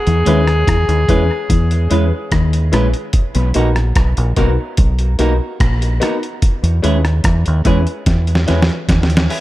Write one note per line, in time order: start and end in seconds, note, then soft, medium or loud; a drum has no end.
0.00 2.74 G#4 loud
0.07 0.26 E2 medium
0.07 0.19 E3 medium
0.07 closed hi-hat soft
0.25 0.65 D#2 medium
0.25 0.51 D#3 medium
0.25 0.39 G#3 medium
0.25 0.39 C#4 medium
0.25 0.42 C#4 medium
0.25 0.42 E4 medium
0.25 0.39 E4 medium
0.25 0.42 G#4 medium
0.25 0.40 B4 medium
0.25 0.42 B4 loud
0.25 closed hi-hat medium
0.47 cross-stick medium
0.47 closed hi-hat soft
0.67 0.88 E2 medium
0.67 0.80 E3 medium
0.67 kick loud
0.67 cross-stick loud
0.67 closed hi-hat medium
0.89 1.07 D#2 medium
0.89 1.01 D#3 medium
0.89 closed hi-hat soft
1.08 1.29 E2 medium
1.08 1.22 E3 medium
1.08 1.21 G#3 medium
1.08 1.24 C#4 loud
1.08 1.22 C#4 medium
1.08 1.24 E4 loud
1.08 1.22 E4 medium
1.08 1.24 G#4 loud
1.08 1.22 B4 medium
1.08 1.24 B4 loud
1.08 kick medium
1.08 closed hi-hat medium
1.50 1.88 E2 loud
1.50 1.75 E3 medium
1.50 kick loud
1.50 closed hi-hat loud
1.71 closed hi-hat soft
1.90 2.11 E2 medium
1.90 2.04 E3 medium
1.90 2.03 G#3 medium
1.90 2.06 C#4 medium
1.90 2.04 C#4 medium
1.90 2.06 E4 medium
1.90 2.04 E4 medium
1.90 2.06 G#4 medium
1.90 2.06 B4 loud
1.90 2.04 B4 medium
1.90 closed hi-hat medium
2.12 2.20 G#4 soft
2.12 2.20 B4 soft
2.32 2.70 D#2 loud
2.32 2.56 D#3 medium
2.32 kick loud
2.32 cross-stick loud
2.32 closed hi-hat medium
2.53 closed hi-hat medium
2.72 2.93 A#1 medium
2.72 2.86 A#2 medium
2.72 2.85 G#3 medium
2.72 2.87 C#4 medium
2.72 2.86 C#4 medium
2.72 2.88 E4 medium
2.72 2.86 E4 medium
2.72 2.88 G#4 medium
2.72 2.88 B4 loud
2.72 2.86 B4 medium
2.72 cross-stick medium
2.72 closed hi-hat medium
2.94 closed hi-hat soft
3.13 kick loud
3.13 closed hi-hat medium
3.35 3.54 B1 loud
3.35 3.47 B2 medium
3.35 closed hi-hat medium
3.54 3.94 A#1 loud
3.54 3.68 A#3 medium
3.54 3.70 B3 medium
3.54 3.68 D#4 medium
3.54 3.70 D#4 medium
3.54 3.70 F#4 medium
3.54 3.68 F#4 medium
3.54 3.70 A#4 loud
3.54 3.68 A#4 medium
3.54 closed hi-hat medium
3.76 cross-stick medium
3.76 closed hi-hat soft
3.96 4.16 B1 medium
3.96 kick loud
3.96 cross-stick loud
3.96 closed hi-hat medium
4.17 4.36 A#1 medium
4.17 closed hi-hat soft
4.36 4.57 B1 medium
4.36 4.50 A#3 medium
4.36 4.52 B3 loud
4.36 4.52 D#4 medium
4.36 4.50 D#4 medium
4.36 4.52 F#4 medium
4.36 4.50 F#4 medium
4.36 4.52 A#4 loud
4.36 4.50 A#4 medium
4.36 kick medium
4.36 closed hi-hat medium
4.77 5.17 B1 loud
4.77 kick loud
4.77 closed hi-hat medium
4.99 5.07 F#4 soft
4.99 5.07 A#4 soft
4.99 closed hi-hat soft
5.19 5.39 B1 medium
5.19 5.32 A#3 medium
5.19 5.34 B3 medium
5.19 5.34 D#4 medium
5.19 5.32 D#4 medium
5.19 5.34 F#4 medium
5.19 5.32 F#4 medium
5.19 5.35 A#4 loud
5.19 5.33 A#4 medium
5.19 closed hi-hat medium
5.60 5.99 A#1 loud
5.60 kick loud
5.60 cross-stick loud
5.60 closed hi-hat medium
5.82 5.90 F#4 soft
5.82 5.89 A#4 soft
5.82 closed hi-hat medium
6.00 6.14 A#3 medium
6.00 6.16 B3 loud
6.00 6.16 D#4 medium
6.00 6.14 D#4 medium
6.00 6.16 F#4 medium
6.00 6.14 F#4 medium
6.00 6.16 A#4 loud
6.00 6.15 A#4 medium
6.00 cross-stick medium
6.00 closed hi-hat medium
6.23 closed hi-hat soft
6.42 kick loud
6.42 closed hi-hat medium
6.63 6.82 E2 loud
6.63 closed hi-hat soft
6.82 7.22 D#2 medium
6.82 6.96 G#3 medium
6.82 6.98 C#4 loud
6.82 6.96 C#4 medium
6.82 6.98 E4 medium
6.82 6.96 E4 medium
6.82 6.98 G#4 medium
6.82 6.97 G#4 medium
6.82 6.98 B4 medium
6.82 closed hi-hat medium
7.05 cross-stick medium
7.05 closed hi-hat soft
7.24 7.44 E2 medium
7.24 kick loud
7.24 cross-stick loud
7.24 closed hi-hat medium
7.46 7.65 D#2 loud
7.46 closed hi-hat soft
7.65 7.85 E2 medium
7.65 7.78 G#3 medium
7.65 7.80 C#4 loud
7.65 7.78 C#4 medium
7.65 7.80 E4 medium
7.65 7.78 E4 loud
7.65 7.81 G#4 medium
7.65 7.79 G#4 medium
7.65 7.81 B4 loud
7.65 kick medium
7.65 closed hi-hat medium
7.87 closed hi-hat soft
8.06 8.45 E2 loud
8.06 kick loud
8.06 snare medium
8.06 closed hi-hat loud
8.27 closed hi-hat soft
8.35 snare medium
8.46 8.69 E2 medium
8.46 8.60 G#3 medium
8.46 8.62 C#4 medium
8.46 8.60 C#4 medium
8.46 8.60 E4 medium
8.46 8.63 E4 medium
8.46 8.63 G#4 medium
8.46 8.61 G#4 medium
8.46 8.63 B4 loud
8.46 snare medium
8.46 closed hi-hat medium
8.62 snare medium
8.69 8.77 G#4 soft
8.69 8.77 B4 soft
8.69 closed hi-hat soft
8.89 9.27 D#2 medium
8.89 kick loud
8.89 snare medium
8.89 closed hi-hat medium
9.03 snare medium
9.10 closed hi-hat medium
9.17 snare loud
9.29 9.40 G#3 medium
9.29 9.40 C#4 medium
9.29 9.40 E4 medium
9.29 9.40 G#4 medium
9.29 9.40 B4 loud
9.29 open hi-hat medium